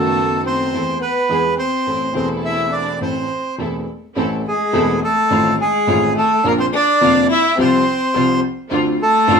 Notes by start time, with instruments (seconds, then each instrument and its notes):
Already playing: upright piano F#1 F#2 D#3 A3 B3 F#4, violin A3, string section B3 D#4 A4, bandoneon A4
0.44 violin C4, bandoneon C5
0.72 upright piano E2 E3 A3 C4 A4, string section E3 C4 E4 A4
0.99 violin B3, bandoneon B4
1.29 upright piano E2 E3 G#3 B3 G#4, string section B3 E4 G#4
1.56 violin C4, bandoneon C5
1.87 upright piano A1 A2 E3 A3 C4 A4, string section C4 E4 A4
2.13 upright piano E1 E2 E3 A3 C4 A4, violin C4, string section C4 E4 A4, bandoneon C5
2.43 violin E4, bandoneon E5
2.72 violin D4, bandoneon D5
3.01 upright piano A1 A2 E3 A3 C4 A4, violin C4, string section C4 E4 A4, bandoneon C5
3.58 upright piano E1 E2 E3 A3 C4 A4, string section C4 E4 A4
4.16 upright piano A1 A2 E3 A3 C4 A4, string section C4 E4 A4
4.47 violin G#3, bandoneon G#4
4.73 upright piano E1 E2 E3 A3 C4 A4, string section C4 E4 A4
5.03 violin A3, bandoneon A4
5.30 upright piano A1 A2 D#3 A3 C4 F4, string section A3 D#4 F4
5.59 violin G#3, bandoneon G#4
5.87 upright piano A1 A2 D#3 A3 C4 F4, string section A3 D#4 F4
6.15 violin A3, bandoneon A4
6.44 upright piano A#1 A#2 D3 F3 A#3 F4, violin A#3, string section A#3 D4 F4, bandoneon A#4
6.58 violin C4, bandoneon C5
6.72 violin D4, bandoneon D5
7.01 upright piano F1 F2 D3 F3 A#3 F4, string section A#3 D4 F4
7.30 violin E4, bandoneon E5
7.58 upright piano C2 C3 F3 G3 F4, string section C3 G3 C4 F4, violin C4, bandoneon C5
8.15 upright piano C2 C3 F3 G3 F4, string section C3 G3 C4 F4
8.71 upright piano D2 D3 A3 C4 F4, string section C4 D4 F4
9.01 violin A3, bandoneon A4
9.27 upright piano A1 A2 D3 A3 C4 F4, string section C4 D4 F4